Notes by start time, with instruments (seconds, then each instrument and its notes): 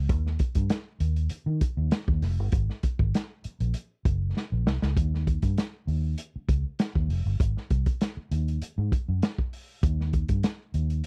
0.09 fingered electric bass D#2, kick, closed hi-hat
0.27 snare
0.39 kick, closed hi-hat
0.55 fingered electric bass G2, kick, closed hi-hat
0.70 snare, closed hi-hat
1.00 fingered electric bass D#2, closed hi-hat
1.16 closed hi-hat
1.30 muted fingered electric bass stroke, closed hi-hat
1.46 fingered electric bass D#3
1.61 kick, closed hi-hat
1.77 fingered electric bass D#2
1.91 snare, closed hi-hat
2.08 fingered electric bass D#2, kick
2.22 fingered electric bass F1, snare, open hi-hat
2.39 fingered electric bass G1
2.52 fingered electric bass G#1, kick, closed hi-hat
2.70 snare
2.83 kick, closed hi-hat
2.99 fingered electric bass G#1, kick
3.14 snare, closed hi-hat
3.44 muted fingered electric bass stroke, closed hi-hat
3.60 fingered electric bass A#1, closed hi-hat
3.74 closed hi-hat
4.05 fingered electric bass F#1, kick, closed hi-hat
4.37 snare
4.52 fingered electric bass A#1
4.66 fingered electric bass C2, snare
4.82 fingered electric bass C#2, snare
4.97 fingered electric bass D#2, kick, closed hi-hat
5.14 snare
5.27 kick, closed hi-hat
5.42 fingered electric bass G2, kick, closed hi-hat
5.58 snare, closed hi-hat
5.87 fingered electric bass D#2, open hi-hat
6.18 closed hi-hat
6.36 muted fingered electric bass stroke
6.49 fingered electric bass C#2, kick, closed hi-hat
6.79 snare, closed hi-hat
6.95 fingered electric bass D#2, kick
7.09 fingered electric bass F1, open hi-hat
7.26 fingered electric bass G1
7.40 fingered electric bass G#1, kick, closed hi-hat
7.57 snare
7.70 fingered electric bass C2, kick, closed hi-hat
7.86 kick, closed hi-hat
8.01 snare, closed hi-hat
8.17 muted fingered electric bass stroke
8.31 fingered electric bass D#2, closed hi-hat
8.48 closed hi-hat
8.61 muted fingered electric bass stroke, closed hi-hat
8.78 fingered electric bass G#2
8.92 kick, closed hi-hat
9.09 fingered electric bass F#2
9.22 snare, closed hi-hat
9.38 kick
9.53 open hi-hat
9.83 fingered electric bass D#2, kick, closed hi-hat
10.01 snare
10.13 kick, closed hi-hat
10.29 fingered electric bass G2, kick, closed hi-hat
10.43 snare, closed hi-hat
10.74 fingered electric bass D#2, closed hi-hat
10.90 closed hi-hat